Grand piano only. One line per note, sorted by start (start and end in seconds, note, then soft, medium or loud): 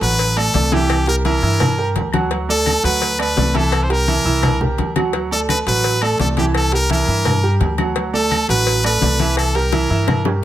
0.01 0.30 F#3 medium
0.01 0.30 F#4 medium
0.01 0.30 F#5 medium
0.37 0.51 A3 medium
0.37 0.51 A4 medium
0.37 0.51 D5 medium
0.54 0.69 A3 medium
0.54 0.69 A4 medium
0.54 0.69 D5 medium
0.72 1.01 E3 medium
0.72 1.01 E4 medium
0.72 1.01 E5 medium
1.07 1.22 G3 medium
1.07 1.22 G4 medium
1.07 1.22 A#4 medium
1.25 1.39 E3 medium
1.25 1.40 E4 medium
1.25 1.40 E5 medium
1.42 1.71 E3 medium
1.42 1.72 E4 medium
1.42 1.72 E5 medium
1.78 2.07 G3 medium
1.78 2.07 G4 medium
1.78 2.07 A#4 medium
2.13 2.28 F#3 medium
2.13 2.28 F#4 medium
2.13 2.28 F#5 medium
2.31 2.45 F#3 medium
2.31 2.46 F#4 medium
2.31 2.46 F#5 medium
2.48 2.77 A3 medium
2.48 2.78 A4 medium
2.48 2.78 D5 medium
2.84 3.13 F#3 medium
2.84 3.13 F#4 medium
2.84 3.13 F#5 medium
3.19 3.34 A3 medium
3.19 3.34 A4 medium
3.19 3.34 D5 medium
3.37 3.51 A3 medium
3.37 3.51 A4 medium
3.37 3.52 D5 medium
3.54 3.83 E3 medium
3.54 3.83 E4 medium
3.54 3.84 E5 medium
3.89 4.04 G3 medium
3.89 4.04 G4 medium
3.89 4.04 A#4 medium
4.07 4.22 E3 medium
4.07 4.22 E4 medium
4.07 4.22 E5 medium
4.25 4.54 E3 medium
4.25 4.54 E4 medium
4.25 4.54 E5 medium
4.61 4.90 G3 medium
4.61 4.90 G4 medium
4.61 4.90 A#4 medium
4.96 5.10 F#3 medium
4.96 5.11 F#4 medium
4.96 5.11 F#5 medium
5.13 5.28 F#3 medium
5.13 5.28 F#4 medium
5.13 5.28 F#5 medium
5.32 5.60 A3 medium
5.32 5.60 A4 medium
5.32 5.61 D5 medium
5.67 5.96 F#3 medium
5.67 5.96 F#4 medium
5.67 5.96 F#5 medium
6.02 6.16 A3 medium
6.02 6.16 A4 medium
6.02 6.17 D5 medium
6.20 6.34 A3 medium
6.20 6.34 A4 medium
6.20 6.34 D5 medium
6.37 6.66 E3 medium
6.37 6.66 E4 medium
6.37 6.66 E5 medium
6.73 6.87 G3 medium
6.73 6.87 G4 medium
6.73 6.87 A#4 medium
6.90 7.05 E3 medium
6.90 7.05 E4 medium
6.90 7.05 E5 medium
7.08 7.37 E3 medium
7.08 7.37 E4 medium
7.08 7.37 E5 medium
7.43 7.72 G3 medium
7.43 7.72 G4 medium
7.43 7.72 A#4 medium
7.78 7.93 F#3 medium
7.78 7.93 F#4 medium
7.78 7.93 F#5 medium
7.96 8.10 F#3 medium
7.96 8.11 F#4 medium
7.96 8.11 F#5 medium
8.13 8.42 A3 medium
8.13 8.43 A4 medium
8.13 8.43 D5 medium
8.49 8.78 F#3 medium
8.49 8.78 F#4 medium
8.49 8.78 F#5 medium
8.84 8.98 A3 medium
8.84 8.99 A4 medium
8.84 8.99 D5 medium
9.02 9.17 A3 medium
9.02 9.17 A4 medium
9.02 9.17 D5 medium
9.19 9.48 E3 medium
9.19 9.49 E4 medium
9.19 9.49 E5 medium
9.55 9.69 G3 medium
9.55 9.70 G4 medium
9.55 9.70 A#4 medium
9.73 9.87 E3 medium
9.73 9.87 E4 medium
9.73 9.88 E5 medium
9.90 10.19 E3 medium
9.90 10.19 E4 medium
9.90 10.19 E5 medium
10.26 10.44 G3 medium
10.26 10.44 G4 medium
10.26 10.44 A#4 medium